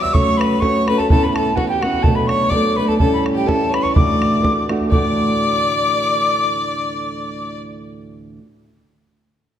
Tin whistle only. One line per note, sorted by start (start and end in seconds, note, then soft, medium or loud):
0.02 0.15 E6 medium
0.13 0.39 C#6 loud
0.37 0.62 B5 medium
0.60 0.89 C#6 loud
0.87 0.99 B5 medium
0.98 1.09 A5 medium
1.10 1.25 A5 medium
1.23 1.36 B5 medium
1.35 1.57 A5 medium
1.56 1.68 F#5 medium
1.69 1.83 G5 medium
1.81 2.04 F#5 medium
2.03 2.17 A5 medium
2.15 2.29 B5 medium
2.27 2.51 C#6 medium
2.50 2.78 D6 medium
2.77 2.90 B5 medium
2.88 2.97 A5 medium
2.98 3.11 A5 medium
3.13 3.25 B5 medium
3.37 3.49 G5 medium
3.48 3.75 A5 medium
3.74 3.84 B5 medium
3.83 3.95 C#6 medium
3.95 4.65 D6 medium
4.92 7.58 D6 loud